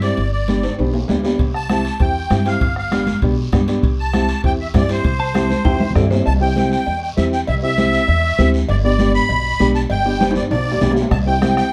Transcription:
Already playing: upright bass G2
0.02 upright piano C4 E4 G4, accordion D5, high timbale, short guiro
0.17 upright bass G1, high timbale, long guiro
0.32 accordion D5
0.48 upright piano B3 D4 G4, high conga, high timbale, short guiro
0.63 high timbale, short guiro
0.79 upright bass B1, upright piano B3 D4 G4, high timbale, long guiro
0.94 low timbale
1.08 upright bass D2, upright piano B3 D4 G4, high conga, low timbale, short guiro
1.24 upright piano B3 D4 G4, low timbale, short guiro
1.39 upright bass C2, bombo low, high timbale, long guiro
1.54 accordion A5, bombo rim
1.69 upright piano C4 E4 G4, bombo rim, high conga, high timbale, short guiro
1.85 high timbale, short guiro
2.00 upright bass E2, upright piano C4 E4 G4, accordion G5, bombo low, high timbale, long guiro
2.30 upright bass G2, upright piano C4 E4 G4, bombo rim, high conga, high timbale, short guiro
2.46 upright piano C4 E4 G4, accordion F5, high timbale, short guiro
2.61 upright bass G1, bombo low, high timbale, long guiro
2.76 accordion F5, bombo rim
2.91 upright piano B3 D4 G4, bombo rim, high conga, high timbale, short guiro
3.07 high conga, high timbale, short guiro
3.22 upright bass B1, upright piano B3 D4 G4, bombo low, high timbale, long guiro
3.52 upright bass G2, upright piano B3 D4 G4, bombo low, bombo rim, high conga, high timbale, short guiro
3.68 upright piano B3 D4 G4, high timbale, short guiro
3.83 upright bass C2, bombo low, high timbale, long guiro
4.00 accordion A5
4.13 upright piano C4 E4 G4, bombo rim, high conga, high timbale, short guiro
4.29 high timbale, short guiro
4.44 upright bass E2, upright piano C4 E4 G4, accordion G5, bombo low, high timbale, long guiro
4.61 accordion E5
4.74 upright bass G2, upright piano C4 E4 G4, accordion D5, bombo low, bombo rim, high conga, high timbale, low timbale, short guiro
4.89 upright piano C4 E4 G4, accordion C5, high timbale, short guiro
5.04 upright bass C2, bombo low, high timbale, long guiro
5.20 clean electric guitar A5
5.34 upright piano C4 E4 G4, bombo rim, high conga, high timbale, short guiro
5.50 high conga, high timbale, short guiro
5.65 upright bass E2, upright piano C4 E4 G4, clean electric guitar G5, bombo low, high timbale, long guiro
5.80 clean electric guitar E5, high conga
5.90 low conga
5.96 upright bass G2, upright piano C4 E4 A4, clean electric guitar D5, bombo low, bombo rim, low timbale, short guiro
6.01 low conga
6.10 upright piano C4 E4 G4, clean electric guitar C5, low conga, low timbale, short guiro
6.26 upright bass C2, accordion A5, cowbell, long guiro
6.41 upright piano C4 E4 G4, accordion G5
6.56 upright piano C4 E4 G4, cowbell, high conga, short guiro
6.72 accordion G5, short guiro
6.87 upright bass E2, cowbell, long guiro
7.03 accordion G5
7.17 upright bass E2, upright piano C4 E4 G4, accordion E5, cowbell, high conga, short guiro
7.33 accordion G5, short guiro
7.47 upright bass C2, accordion E5, cowbell, long guiro
7.63 upright piano C4 E4 G4, accordion E5
7.78 upright piano C4 E4 G4, cowbell, high conga, short guiro
7.93 short guiro
8.08 upright bass E2, cowbell, long guiro
8.38 upright bass D2, upright piano C4 E4 G4, cowbell, high conga, low conga, short guiro
8.54 short guiro
8.69 upright bass G1, accordion D5, cowbell, long guiro
8.84 upright piano B3 D4 G4, accordion D5
8.99 upright piano B3 D4 G4, cowbell, high conga, short guiro
9.15 accordion B5, short guiro
9.29 upright bass B1, cowbell, long guiro
9.59 upright bass B1, upright piano B3 D4 G4, cowbell, high conga, short guiro
9.75 accordion A5, short guiro
9.90 upright bass G1, accordion G5, cowbell, long guiro
10.05 upright piano B3 D4 G4
10.20 upright piano B3 D4 G4, cowbell, high conga, high timbale, short guiro
10.31 high timbale
10.35 accordion D5, high conga, short guiro
10.51 upright bass B1, accordion D5, cowbell, high timbale, long guiro
10.72 low timbale
10.81 upright bass B1, upright piano B3 D4 G4, cowbell, high conga, low conga, low timbale, short guiro
10.91 low timbale
10.96 short guiro
11.01 low timbale
11.11 upright bass C2, accordion A5, bombo low, bombo rim, cowbell, long guiro
11.26 upright piano C4 E4 G4, accordion G5
11.41 upright piano C4 E4 G4, bombo rim, cowbell, high conga, short guiro
11.57 accordion G5, bombo rim, short guiro

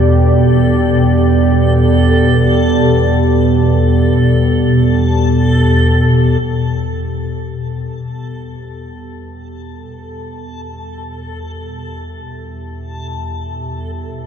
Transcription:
Already playing: synth drone E2 B2, analog synth pad B3 G4 D5, synth texture A4
6.40 synth drone E2 B2, synth texture A4
9.81 analog synth pad E5

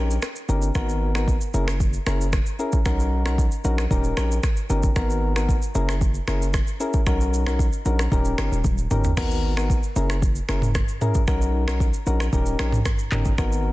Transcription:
Already playing: 808-style bass A#1, synth keys C#4 D#4 G4 A#4
0.11 shaker
0.22 finger snap, cross-stick, shaker
0.36 shaker
0.48 808-style bass G1, synth keys C#4 D#4 G4 A#4, shaker
0.62 shaker
0.75 808-style bass G#1, synth keys B3 D#4 F#4 A#4, finger snap, kick, cross-stick, shaker
0.89 shaker
1.15 synth keys B3 D#4 F#4 A#4, finger snap, cross-stick, shaker
1.28 kick, shaker
1.41 shaker
1.54 808-style bass F#1, synth keys C#4 E4 G#4 A#4, shaker
1.68 finger snap, cross-stick, shaker
1.80 kick, shaker
1.93 shaker
2.06 808-style bass F#1, synth keys C#4 E4 G#4 A#4, finger snap, cross-stick, shaker
2.21 shaker
2.33 finger snap, kick, cross-stick, shaker
2.46 shaker
2.59 synth keys C#4 E4 G#4 A#4, shaker
2.72 kick, shaker
2.85 808-style bass B1, synth keys C#4 D#4 F#4 A#4, finger snap, kick, cross-stick, shaker
3.00 shaker
3.25 synth keys C#4 D#4 F#4 A#4, finger snap, cross-stick, shaker
3.38 kick, shaker
3.52 shaker
3.64 808-style bass A#1, synth keys C#4 D#4 F#4 A#4, shaker
3.78 finger snap, cross-stick, shaker
3.91 808-style bass D#1, synth keys C#4 D#4 G4 A#4, kick, shaker
4.04 shaker
4.17 808-style bass A#1, synth keys C#4 D#4 G4 A#4, finger snap, cross-stick, shaker
4.32 shaker
4.43 finger snap, kick, cross-stick, shaker
4.57 shaker
4.69 808-style bass G1, synth keys C#4 D#4 G4 A#4, shaker
4.83 kick, shaker
4.96 808-style bass G#1, synth keys B3 D#4 F#4 A#4, finger snap, kick, cross-stick, shaker
5.10 shaker
5.36 synth keys B3 D#4 F#4 A#4, finger snap, cross-stick, shaker
5.49 kick, shaker
5.62 shaker
5.75 808-style bass F#1, synth keys C#4 E4 G#4 A#4, shaker
5.89 finger snap, cross-stick, shaker
6.01 kick, shaker
6.14 shaker
6.28 808-style bass F#1, synth keys C#4 E4 G#4 A#4, finger snap, cross-stick, shaker
6.42 shaker
6.54 finger snap, kick, cross-stick, shaker
6.67 shaker
6.80 synth keys C#4 E4 G#4 A#4, shaker
6.93 kick, shaker
7.06 808-style bass B1, synth keys C#4 D#4 F#4 A#4, finger snap, kick, cross-stick, shaker
7.21 shaker
7.34 shaker
7.46 synth keys C#4 D#4 F#4 A#4, finger snap, cross-stick, shaker
7.59 kick, shaker
7.73 shaker
7.85 808-style bass A#1, synth keys C#4 D#4 F#4 A#4, shaker
7.99 finger snap, cross-stick, shaker
8.12 808-style bass D#1, synth keys C#4 D#4 G4 A#4, kick, shaker
8.25 shaker
8.38 808-style bass G1, synth keys G4 A#4, finger snap, cross-stick, shaker
8.52 808-style bass D#1, shaker
8.64 808-style bass D#1, kick, high tom, shaker
8.78 shaker
8.91 808-style bass G1, synth keys C#4 D#4 G4 A#4, mid tom, shaker
9.04 floor tom, shaker
9.17 808-style bass G#1, synth keys B3 D#4 F#4 A#4, finger snap, kick, cross-stick, crash, shaker
9.31 shaker
9.57 synth keys B3 D#4 F#4 A#4, finger snap, cross-stick, shaker
9.70 kick, shaker
9.83 shaker
9.96 808-style bass F#1, synth keys C#4 E4 G#4 A#4, shaker
10.10 finger snap, cross-stick, shaker
10.22 kick, shaker
10.35 shaker
10.48 808-style bass F#1, synth keys C#4 E4 G#4 A#4, finger snap, cross-stick, shaker
10.62 mid tom, shaker
10.75 finger snap, kick, cross-stick, shaker
10.88 shaker
11.01 synth keys C#4 E4 G#4 A#4, mid tom, shaker
11.14 kick, shaker
11.27 808-style bass B1, synth keys C#4 D#4 F#4 A#4, finger snap, kick, cross-stick, shaker
11.42 shaker
11.67 synth keys C#4 D#4 F#4 A#4, finger snap, cross-stick, shaker
11.80 kick, shaker
11.94 shaker
12.06 808-style bass A#1, synth keys C#4 D#4 F#4 A#4, shaker
12.20 finger snap, cross-stick, shaker
12.33 808-style bass D#1, synth keys C#4 D#4 G4 A#4, kick, shaker
12.46 shaker
12.59 808-style bass A#1, synth keys C#4 D#4 G4 A#4, finger snap, cross-stick, shaker
12.72 mid tom, shaker
12.85 finger snap, kick, cross-stick, shaker
12.99 shaker
13.12 808-style bass G1, synth keys C#4 D#4 G4 A#4, clap, mid tom, shaker
13.25 kick, shaker
13.38 808-style bass G#1, synth keys B3 D#4 F#4 A#4, finger snap, kick, cross-stick, shaker
13.52 shaker

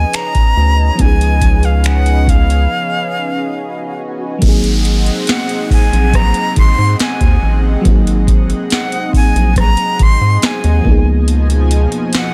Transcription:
Already playing: fm electric piano F3 B3 C#4 D#4 G#4, analog synth pad C#4 B4 D#5 G#5, flute G#5
0.13 flute A#5, finger snap, closed hi-hat
0.35 kick, closed hi-hat
0.57 analog synth bass D2
0.95 fm electric piano F3 B3, closed hi-hat, swell
0.99 analog synth bass C#2, fm electric piano C#4 D#4, flute G#5, kick
1.05 fm electric piano G#4
1.21 closed hi-hat
1.41 kick, closed hi-hat
1.63 flute F5, closed hi-hat
1.84 flute F#5, finger snap, closed hi-hat
2.06 closed hi-hat
2.27 flute F5, kick, closed hi-hat
2.50 closed hi-hat
4.38 analog synth bass G#1, fm electric piano F#3 A#3, analog synth pad C4 G#4 D#5 F#5, kick, closed hi-hat, downlifter
4.43 fm electric piano C4 D#4
4.48 fm electric piano G#4
4.64 closed hi-hat
4.85 closed hi-hat
5.06 closed hi-hat
5.27 flute F#5, snare, closed hi-hat
5.49 closed hi-hat
5.70 analog synth bass A#1, flute G#5, kick, open hi-hat
5.93 analog synth bass A#1, closed hi-hat
6.13 flute A#5, kick, cross-stick, closed hi-hat
6.34 closed hi-hat
6.56 analog synth bass G#1, flute C6, kick, closed hi-hat
6.78 analog synth bass G#2
7.00 flute G#5, snare, closed hi-hat
7.21 analog synth bass D#2, kick, closed hi-hat
7.42 analog synth bass A1
7.81 analog synth bass G#1, fm electric piano F#3 A#3, kick, closed hi-hat
7.86 fm electric piano C4 D#4
7.91 fm electric piano G#4
8.07 closed hi-hat
8.27 kick, closed hi-hat
8.50 closed hi-hat
8.70 flute F#5, snare, closed hi-hat
8.92 closed hi-hat
9.13 analog synth bass A#1, flute G#5, kick, open hi-hat
9.35 analog synth bass A#1, closed hi-hat
9.56 flute A#5, kick, cross-stick, closed hi-hat
9.77 closed hi-hat
9.99 analog synth bass G#1, flute C6, kick, closed hi-hat
10.21 analog synth bass G#2
10.42 flute G#5, snare, closed hi-hat
10.64 analog synth bass D#2, closed hi-hat
10.81 analog synth bass C#2, analog synth pad B2 F3 G#5, fm electric piano F3 A#3, kick
10.86 fm electric piano B3 D#4
10.91 fm electric piano G#4
11.28 closed hi-hat
11.50 closed hi-hat
11.71 closed hi-hat
11.92 closed hi-hat
12.13 snare, closed hi-hat
12.17 flute F#5

